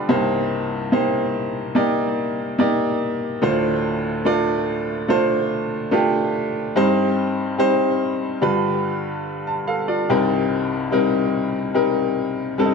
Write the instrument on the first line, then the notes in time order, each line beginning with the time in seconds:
upright piano
Already playing: G2 D3 G3 D4 F4 B4 D5 D#5 F5 G5
0.09 C2 G2 A#3 D#4 G4 C5
0.92 A#3 D#4 G4 C5
1.75 A#3 D#4 G4 D5
2.59 A#3 D#4 G4 D5
3.42 D2 A2 A3 D4 F4 C5
4.25 A3 D4 F4 D5
5.08 A3 D4 F4 C5
5.91 A3 D4 F4 G4
6.76 G2 G3 C4 D#4 C5
7.58 G3 C4 D#4 C5
8.41 G2 D3 G3 D4 F4 B4
9.47 A5
9.67 A4 F5
9.88 F4 D5
10.10 C2 G2 G3 C4 D#4 A#4
10.91 G3 C4 D#4 A#4
11.74 G3 C4 D#4 A#4
12.58 G3 C4 D4 A4
12.66 D#4